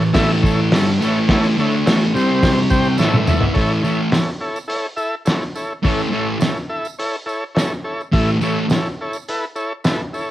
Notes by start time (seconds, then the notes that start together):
0.02 tambourine
0.13 A2 E3 A3 E4 A4 E5, kick, snare, open hi-hat, tambourine
0.31 tambourine
0.43 E4 A4 C#5, kick, tambourine
0.72 G2 D3 G3 E4 A4 C#5, snare, open hi-hat, tambourine
1.00 A2 E3 A3 E4 C#5, tambourine
1.04 A4
1.29 E4 A4 C#5, kick, snare, open hi-hat, tambourine
1.44 tambourine
1.57 D3 A3 D4 E4 A4 C#5, tambourine
1.72 tambourine
1.86 A2 E3 A3 E4 A4 C#5, snare, open hi-hat, tambourine
2.14 C3 G3 C4 G4 C5, tambourine
2.43 kick, snare, open hi-hat, tambourine
2.58 tambourine
2.70 C4 G4 C5 G5, kick, tambourine
2.85 tambourine
2.98 A2 E3 A3 E4 A4 C#5 E5, snare, tambourine
3.12 high tom, tambourine
3.26 E3 B3 E4 A4 E5, mid tom, tambourine
3.41 floor tom, tambourine
3.52 E4 A4 C#5, kick, open hi-hat
3.56 A2 E3 A3, tambourine
3.73 tambourine
3.83 A2 E3 A3 E4 A4 C#5, tambourine
4.11 E4 A4 C#5, snare, open hi-hat, tambourine
4.28 tambourine
4.40 E4 A4 C#5
4.56 tambourine
4.68 E4 A4 C#5, open hi-hat, tambourine
4.96 E4 A4 E5, tambourine
5.25 E4 A4 C#5, snare, open hi-hat, tambourine
5.42 tambourine
5.55 E4 A4 C#5, tambourine
5.83 A2 E3 A3 E4 A4 C#5, kick, open hi-hat, tambourine
5.99 tambourine
6.11 A2 E3 A3 E4 A4 C#5
6.39 E4 A4 C#5, snare, open hi-hat, tambourine
6.57 tambourine
6.69 E4 A4 E5
6.85 tambourine
6.99 E4 A4 C#5, open hi-hat, tambourine
7.26 E4 A4 C#5, tambourine
7.55 E4 A4 C#5, snare, open hi-hat, tambourine
7.74 tambourine
7.84 E4 A4 C#5
8.01 tambourine
8.12 A2 E3 A3 E4 A4 E5, kick, open hi-hat, tambourine
8.28 tambourine
8.41 A2 E3 A3 E4 A4 C#5, tambourine
8.70 E4 A4 C#5, snare, open hi-hat, tambourine
8.86 tambourine
9.01 E4 A4 C#5
9.13 tambourine
9.28 E4 A4 B4, open hi-hat, tambourine
9.55 E4 A4 C#5, tambourine
9.84 E4 A4 B4, snare, open hi-hat, tambourine
10.00 tambourine
10.13 E4 A4 C#5, tambourine